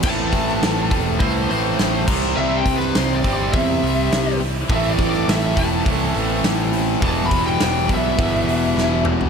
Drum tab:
CC |x-------------x-|----------------|----------------|----------------|
HH |--o-o-o-o-o-o---|--o-o-o-o-o-o-o-|o-o-o-o-o-o-o-o-|o-o-o-o-o-o-----|
SD |---oo-------o---|---oo-------o---|---oo-------o---|---oo-------o---|
T2 |----------------|----------------|----------------|--------------o-|
FT |----------------|----------------|----------------|---------------o|
BD |o-o---o-o-----o-|--o---o-o-------|o-o---o-o-------|o-o---o-o-------|